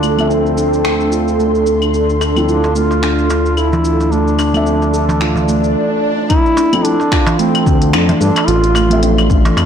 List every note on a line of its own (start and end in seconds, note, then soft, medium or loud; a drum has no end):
0.00 5.75 D2 medium
0.00 0.29 A3 medium
0.00 0.32 D4 medium
0.00 5.71 D4 medium
0.00 5.71 A4 medium
0.00 5.71 C6 medium
0.00 claves medium
0.00 shaker medium
0.16 2.32 F3 medium
0.16 2.32 A3 medium
0.16 2.33 C4 medium
0.16 claves medium
0.16 shaker soft
0.20 2.34 E5 medium
0.30 1.66 C4 medium
0.30 0.56 D4 medium
0.30 shaker soft
0.46 shaker soft
0.57 0.66 D4 medium
0.57 shaker medium
0.73 shaker soft
0.84 0.99 A4 medium
0.84 finger snap medium
0.84 shaker soft
1.00 shaker soft
1.12 1.38 F4 medium
1.12 shaker medium
1.28 shaker soft
1.39 1.65 A3 medium
1.39 shaker soft
1.55 shaker soft
1.66 1.92 D4 medium
1.66 shaker medium
1.82 claves medium
1.82 shaker soft
1.94 2.03 D4 medium
1.94 shaker soft
2.10 shaker soft
2.21 2.36 A4 medium
2.21 darbuka tek medium
2.21 claves medium
2.21 shaker medium
2.35 2.57 F3 medium
2.35 2.57 A3 medium
2.35 2.58 C4 medium
2.35 2.58 E4 medium
2.35 claves medium
2.35 shaker soft
2.48 2.73 D4 medium
2.48 2.74 F4 medium
2.48 shaker soft
2.64 darbuka ka soft
2.64 darbuka tek medium
2.64 shaker soft
2.76 3.02 A3 medium
2.76 3.59 F4 loud
2.76 shaker medium
2.91 darbuka ka medium
2.91 shaker soft
3.03 3.29 D4 medium
3.03 finger snap medium
3.03 shaker soft
3.18 shaker soft
3.30 3.39 D4 medium
3.30 darbuka ka soft
3.30 darbuka tek medium
3.30 shaker medium
3.46 shaker soft
3.57 4.13 E4 medium
3.57 3.72 A4 medium
3.57 claves soft
3.57 shaker soft
3.73 darbuka dum medium
3.73 shaker soft
3.85 4.11 F4 medium
3.85 shaker medium
4.00 darbuka ka soft
4.00 shaker soft
4.12 4.38 A3 medium
4.12 5.76 D4 medium
4.12 shaker soft
4.28 shaker soft
4.39 4.65 D4 medium
4.39 darbuka tek medium
4.39 claves medium
4.39 shaker medium
4.53 5.75 F3 medium
4.53 5.75 A3 medium
4.53 5.76 C4 medium
4.53 5.77 E5 medium
4.53 claves medium
4.53 shaker soft
4.66 4.75 D4 medium
4.66 shaker soft
4.82 darbuka ka soft
4.82 shaker soft
4.94 5.08 A4 medium
4.94 shaker medium
5.09 darbuka ka medium
5.09 darbuka tek medium
5.09 darbuka dum medium
5.09 shaker soft
5.21 5.47 F4 medium
5.21 finger snap medium
5.21 swell medium
5.21 shaker soft
5.36 darbuka dum medium
5.36 shaker soft
5.48 5.74 A3 medium
5.48 shaker medium
5.64 shaker soft
6.30 6.56 D4 medium
6.30 9.65 D4 medium
6.30 6.86 E4 loud
6.30 9.65 A4 medium
6.30 9.65 C6 medium
6.30 kick loud
6.30 closed hi-hat medium
6.30 claves medium
6.30 shaker soft
6.46 shaker soft
6.57 6.66 D4 medium
6.57 darbuka tek medium
6.57 shaker medium
6.72 6.94 F3 medium
6.72 6.94 A3 medium
6.72 6.94 C4 medium
6.72 6.95 E4 medium
6.72 closed hi-hat soft
6.72 claves medium
6.72 shaker soft
6.84 7.38 D4 loud
6.84 6.99 A4 medium
6.84 closed hi-hat medium
6.84 shaker soft
7.00 darbuka ka medium
7.00 shaker soft
7.11 7.38 F4 medium
7.11 finger snap medium
7.11 kick loud
7.11 claves medium
7.11 shaker medium
7.27 closed hi-hat soft
7.27 darbuka ka medium
7.27 darbuka tek medium
7.27 darbuka dum medium
7.27 shaker soft
7.39 7.65 A3 medium
7.39 7.90 C4 medium
7.39 closed hi-hat medium
7.39 shaker soft
7.55 closed hi-hat soft
7.55 darbuka tek soft
7.55 claves medium
7.55 shaker soft
7.66 7.95 D2 loud
7.66 7.92 D4 medium
7.66 kick loud
7.66 darbuka ka medium
7.66 shaker medium
7.82 closed hi-hat soft
7.82 shaker soft
7.93 8.13 F2 loud
7.93 8.02 D4 medium
7.93 finger snap medium
7.93 closed hi-hat medium
7.93 claves medium
7.93 shaker soft
8.09 closed hi-hat soft
8.09 darbuka ka soft
8.09 darbuka dum medium
8.09 shaker soft
8.20 8.31 G2 medium
8.20 8.49 D4 loud
8.20 8.36 A4 medium
8.20 shaker medium
8.36 closed hi-hat soft
8.36 darbuka ka medium
8.36 darbuka tek medium
8.36 claves medium
8.36 shaker soft
8.47 9.51 A1 loud
8.47 9.02 F4 loud
8.47 8.74 F4 medium
8.47 closed hi-hat medium
8.47 shaker soft
8.64 closed hi-hat soft
8.64 shaker soft
8.75 9.02 A3 medium
8.75 darbuka tek medium
8.75 claves medium
8.75 shaker medium
8.89 9.65 F3 medium
8.89 9.65 A3 medium
8.89 9.65 C4 medium
8.89 9.65 E5 medium
8.89 closed hi-hat soft
8.89 shaker soft
9.03 9.29 D4 medium
9.03 closed hi-hat medium
9.03 shaker soft
9.18 darbuka ka medium
9.18 claves medium
9.18 shaker soft
9.30 9.39 D4 medium
9.30 kick loud
9.30 shaker medium
9.45 closed hi-hat soft
9.45 darbuka ka medium
9.45 darbuka tek medium
9.45 darbuka dum medium
9.45 shaker soft
9.57 9.65 F2 loud
9.57 9.65 A4 medium
9.57 closed hi-hat medium
9.57 darbuka tek medium
9.57 claves medium
9.57 shaker soft